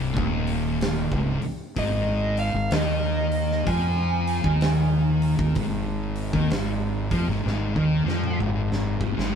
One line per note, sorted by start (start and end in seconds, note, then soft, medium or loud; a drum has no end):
0.00 0.13 C1 medium
0.00 0.15 C2 loud
0.16 1.08 D#1 medium
0.16 1.10 D#2 loud
0.16 kick loud
0.47 open hi-hat medium
0.81 snare loud
0.81 open hi-hat medium
1.12 1.40 C#1 medium
1.12 1.40 C#2 loud
1.12 kick loud
1.42 muted fingered electric bass stroke soft
1.42 muted distorted electric guitar stroke medium
1.42 open hi-hat medium
1.76 2.50 G#1 medium
1.76 2.53 G#2 loud
1.76 2.39 D#5 loud
1.76 kick loud
1.76 open hi-hat medium
2.37 2.71 F5 medium
2.37 open hi-hat medium
2.54 2.70 G#1 medium
2.54 2.72 G#2 medium
2.71 3.63 D#2 medium
2.71 3.66 D#3 loud
2.71 3.71 D#5 medium
2.71 snare loud
2.71 open hi-hat medium
3.32 open hi-hat medium
3.51 snare soft
3.67 4.41 F2 loud
3.67 4.44 F3 loud
3.67 8.37 G#5 medium
3.67 kick loud
3.67 open hi-hat medium
4.27 open hi-hat medium
4.44 5.35 D#2 medium
4.44 5.38 D#3 loud
4.44 kick loud
4.61 snare loud
4.61 open hi-hat medium
5.22 open hi-hat medium
5.39 5.55 D#2 medium
5.39 5.56 D#3 loud
5.39 kick loud
5.55 6.30 G#1 medium
5.55 6.33 G#2 medium
5.55 kick loud
5.55 open hi-hat medium
6.16 open hi-hat medium
6.33 6.50 D#2 loud
6.33 6.50 D#3 medium
6.33 kick loud
6.50 7.08 G#1 medium
6.50 7.09 G#2 loud
6.50 snare loud
6.50 open hi-hat medium
7.11 7.27 F2 medium
7.11 7.28 F3 loud
7.11 kick loud
7.11 snare soft
7.11 open hi-hat medium
7.28 7.45 G#1 loud
7.28 7.44 G#2 medium
7.28 snare soft
7.46 7.74 G#1 loud
7.46 7.74 G#2 loud
7.46 snare medium
7.75 8.04 D#2 medium
7.75 8.04 D#3 loud
7.75 kick medium
8.05 8.38 F2 loud
8.05 8.40 F3 loud
8.05 snare medium
8.24 mid tom medium
8.40 8.97 G#1 loud
8.40 8.99 G#2 loud
8.40 mid tom medium
8.72 snare medium
9.00 9.17 G#1 medium
9.00 9.15 G#2 medium
9.00 kick medium
9.17 9.34 G#1 medium
9.17 9.34 G#2 loud
9.17 snare medium